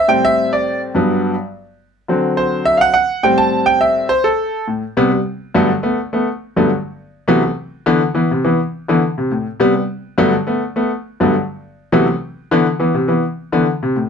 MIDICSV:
0, 0, Header, 1, 2, 480
1, 0, Start_track
1, 0, Tempo, 575264
1, 68, Time_signature, 4, 2, 24, 8
1, 5347, Tempo, 580833
1, 11698, End_track
2, 0, Start_track
2, 0, Title_t, "Grand piano"
2, 0, Program_c, 0, 0
2, 67, Note_on_c, 0, 45, 53
2, 69, Note_on_c, 0, 55, 49
2, 72, Note_on_c, 0, 79, 103
2, 76, Note_on_c, 0, 60, 63
2, 200, Note_off_c, 0, 79, 0
2, 205, Note_on_c, 0, 76, 99
2, 423, Note_off_c, 0, 76, 0
2, 440, Note_on_c, 0, 74, 73
2, 660, Note_off_c, 0, 74, 0
2, 752, Note_off_c, 0, 45, 0
2, 753, Note_off_c, 0, 55, 0
2, 756, Note_off_c, 0, 60, 0
2, 790, Note_on_c, 0, 43, 61
2, 798, Note_on_c, 0, 54, 58
2, 798, Note_on_c, 0, 59, 67
2, 1111, Note_off_c, 0, 43, 0
2, 1116, Note_off_c, 0, 54, 0
2, 1116, Note_off_c, 0, 59, 0
2, 1739, Note_on_c, 0, 50, 47
2, 1745, Note_on_c, 0, 54, 53
2, 1750, Note_on_c, 0, 60, 60
2, 1979, Note_on_c, 0, 72, 82
2, 2203, Note_off_c, 0, 72, 0
2, 2215, Note_on_c, 0, 76, 91
2, 2314, Note_on_c, 0, 77, 68
2, 2316, Note_off_c, 0, 76, 0
2, 2346, Note_on_c, 0, 78, 97
2, 2347, Note_off_c, 0, 77, 0
2, 2426, Note_off_c, 0, 50, 0
2, 2429, Note_off_c, 0, 54, 0
2, 2431, Note_off_c, 0, 60, 0
2, 2437, Note_off_c, 0, 78, 0
2, 2450, Note_on_c, 0, 78, 94
2, 2697, Note_on_c, 0, 45, 53
2, 2698, Note_on_c, 0, 79, 92
2, 2703, Note_off_c, 0, 78, 0
2, 2704, Note_on_c, 0, 55, 55
2, 2708, Note_on_c, 0, 60, 73
2, 2818, Note_on_c, 0, 81, 99
2, 2830, Note_off_c, 0, 79, 0
2, 3046, Note_off_c, 0, 81, 0
2, 3053, Note_on_c, 0, 79, 104
2, 3176, Note_on_c, 0, 76, 89
2, 3177, Note_off_c, 0, 79, 0
2, 3385, Note_off_c, 0, 45, 0
2, 3389, Note_off_c, 0, 55, 0
2, 3391, Note_off_c, 0, 60, 0
2, 3414, Note_on_c, 0, 72, 95
2, 3426, Note_off_c, 0, 76, 0
2, 3539, Note_on_c, 0, 69, 82
2, 3548, Note_off_c, 0, 72, 0
2, 3871, Note_off_c, 0, 69, 0
2, 3900, Note_on_c, 0, 45, 47
2, 4016, Note_off_c, 0, 45, 0
2, 4145, Note_on_c, 0, 55, 68
2, 4147, Note_on_c, 0, 48, 80
2, 4149, Note_on_c, 0, 59, 86
2, 4258, Note_off_c, 0, 55, 0
2, 4260, Note_off_c, 0, 48, 0
2, 4260, Note_off_c, 0, 59, 0
2, 4277, Note_on_c, 0, 55, 23
2, 4278, Note_on_c, 0, 59, 25
2, 4318, Note_off_c, 0, 55, 0
2, 4319, Note_off_c, 0, 59, 0
2, 4627, Note_on_c, 0, 50, 71
2, 4628, Note_on_c, 0, 43, 83
2, 4630, Note_on_c, 0, 54, 78
2, 4634, Note_on_c, 0, 57, 79
2, 4634, Note_on_c, 0, 59, 84
2, 4740, Note_off_c, 0, 50, 0
2, 4741, Note_off_c, 0, 43, 0
2, 4742, Note_off_c, 0, 54, 0
2, 4744, Note_off_c, 0, 57, 0
2, 4744, Note_off_c, 0, 59, 0
2, 4864, Note_on_c, 0, 57, 59
2, 4866, Note_on_c, 0, 59, 70
2, 4979, Note_off_c, 0, 57, 0
2, 4980, Note_off_c, 0, 59, 0
2, 5113, Note_on_c, 0, 57, 60
2, 5119, Note_on_c, 0, 59, 62
2, 5225, Note_off_c, 0, 57, 0
2, 5228, Note_off_c, 0, 59, 0
2, 5476, Note_on_c, 0, 54, 61
2, 5478, Note_on_c, 0, 43, 59
2, 5478, Note_on_c, 0, 57, 62
2, 5479, Note_on_c, 0, 50, 56
2, 5481, Note_on_c, 0, 59, 75
2, 5576, Note_off_c, 0, 54, 0
2, 5577, Note_off_c, 0, 43, 0
2, 5577, Note_off_c, 0, 50, 0
2, 5577, Note_off_c, 0, 57, 0
2, 5579, Note_off_c, 0, 59, 0
2, 6064, Note_on_c, 0, 48, 81
2, 6066, Note_on_c, 0, 52, 70
2, 6068, Note_on_c, 0, 54, 73
2, 6070, Note_on_c, 0, 57, 72
2, 6071, Note_on_c, 0, 59, 92
2, 6179, Note_off_c, 0, 48, 0
2, 6180, Note_off_c, 0, 52, 0
2, 6180, Note_off_c, 0, 54, 0
2, 6181, Note_off_c, 0, 57, 0
2, 6182, Note_off_c, 0, 59, 0
2, 6199, Note_on_c, 0, 57, 20
2, 6199, Note_on_c, 0, 59, 26
2, 6240, Note_off_c, 0, 57, 0
2, 6240, Note_off_c, 0, 59, 0
2, 6548, Note_on_c, 0, 50, 86
2, 6550, Note_on_c, 0, 52, 72
2, 6552, Note_on_c, 0, 59, 91
2, 6660, Note_off_c, 0, 50, 0
2, 6661, Note_off_c, 0, 52, 0
2, 6662, Note_off_c, 0, 59, 0
2, 6782, Note_on_c, 0, 52, 61
2, 6787, Note_on_c, 0, 59, 69
2, 6897, Note_off_c, 0, 52, 0
2, 6900, Note_off_c, 0, 59, 0
2, 6920, Note_on_c, 0, 48, 55
2, 7017, Note_off_c, 0, 48, 0
2, 7030, Note_on_c, 0, 52, 63
2, 7032, Note_on_c, 0, 59, 60
2, 7141, Note_off_c, 0, 52, 0
2, 7142, Note_off_c, 0, 59, 0
2, 7393, Note_on_c, 0, 50, 63
2, 7398, Note_on_c, 0, 52, 66
2, 7401, Note_on_c, 0, 59, 75
2, 7493, Note_off_c, 0, 50, 0
2, 7495, Note_off_c, 0, 52, 0
2, 7497, Note_off_c, 0, 59, 0
2, 7636, Note_on_c, 0, 48, 55
2, 7734, Note_off_c, 0, 48, 0
2, 7749, Note_on_c, 0, 45, 49
2, 7860, Note_off_c, 0, 45, 0
2, 7982, Note_on_c, 0, 48, 75
2, 7986, Note_on_c, 0, 55, 78
2, 7990, Note_on_c, 0, 59, 91
2, 8096, Note_off_c, 0, 59, 0
2, 8097, Note_off_c, 0, 48, 0
2, 8098, Note_off_c, 0, 55, 0
2, 8108, Note_on_c, 0, 59, 27
2, 8111, Note_on_c, 0, 55, 22
2, 8154, Note_off_c, 0, 59, 0
2, 8155, Note_off_c, 0, 55, 0
2, 8461, Note_on_c, 0, 50, 78
2, 8462, Note_on_c, 0, 43, 81
2, 8465, Note_on_c, 0, 54, 82
2, 8465, Note_on_c, 0, 59, 98
2, 8467, Note_on_c, 0, 57, 81
2, 8576, Note_off_c, 0, 50, 0
2, 8577, Note_off_c, 0, 43, 0
2, 8578, Note_off_c, 0, 54, 0
2, 8578, Note_off_c, 0, 59, 0
2, 8579, Note_off_c, 0, 57, 0
2, 8701, Note_on_c, 0, 57, 61
2, 8707, Note_on_c, 0, 59, 71
2, 8816, Note_off_c, 0, 57, 0
2, 8819, Note_off_c, 0, 59, 0
2, 8942, Note_on_c, 0, 57, 58
2, 8947, Note_on_c, 0, 59, 64
2, 9057, Note_off_c, 0, 57, 0
2, 9059, Note_off_c, 0, 59, 0
2, 9308, Note_on_c, 0, 50, 57
2, 9310, Note_on_c, 0, 43, 65
2, 9311, Note_on_c, 0, 54, 64
2, 9313, Note_on_c, 0, 59, 73
2, 9314, Note_on_c, 0, 57, 56
2, 9410, Note_off_c, 0, 50, 0
2, 9411, Note_off_c, 0, 43, 0
2, 9412, Note_off_c, 0, 54, 0
2, 9413, Note_off_c, 0, 57, 0
2, 9413, Note_off_c, 0, 59, 0
2, 9905, Note_on_c, 0, 48, 82
2, 9906, Note_on_c, 0, 52, 73
2, 9907, Note_on_c, 0, 54, 75
2, 9908, Note_on_c, 0, 57, 69
2, 9912, Note_on_c, 0, 59, 86
2, 10018, Note_off_c, 0, 48, 0
2, 10019, Note_off_c, 0, 52, 0
2, 10019, Note_off_c, 0, 54, 0
2, 10020, Note_off_c, 0, 57, 0
2, 10022, Note_off_c, 0, 59, 0
2, 10037, Note_on_c, 0, 59, 23
2, 10039, Note_on_c, 0, 57, 21
2, 10078, Note_off_c, 0, 59, 0
2, 10079, Note_off_c, 0, 57, 0
2, 10393, Note_on_c, 0, 50, 87
2, 10393, Note_on_c, 0, 52, 76
2, 10399, Note_on_c, 0, 59, 86
2, 10502, Note_off_c, 0, 50, 0
2, 10502, Note_off_c, 0, 52, 0
2, 10506, Note_off_c, 0, 59, 0
2, 10625, Note_on_c, 0, 52, 62
2, 10629, Note_on_c, 0, 59, 65
2, 10739, Note_off_c, 0, 52, 0
2, 10741, Note_off_c, 0, 59, 0
2, 10748, Note_on_c, 0, 48, 60
2, 10851, Note_off_c, 0, 48, 0
2, 10860, Note_on_c, 0, 52, 58
2, 10864, Note_on_c, 0, 59, 58
2, 10976, Note_off_c, 0, 52, 0
2, 10978, Note_off_c, 0, 59, 0
2, 11228, Note_on_c, 0, 50, 65
2, 11228, Note_on_c, 0, 52, 51
2, 11232, Note_on_c, 0, 59, 70
2, 11331, Note_off_c, 0, 50, 0
2, 11331, Note_off_c, 0, 52, 0
2, 11333, Note_off_c, 0, 59, 0
2, 11478, Note_on_c, 0, 48, 58
2, 11576, Note_off_c, 0, 48, 0
2, 11590, Note_on_c, 0, 45, 48
2, 11698, Note_off_c, 0, 45, 0
2, 11698, End_track
0, 0, End_of_file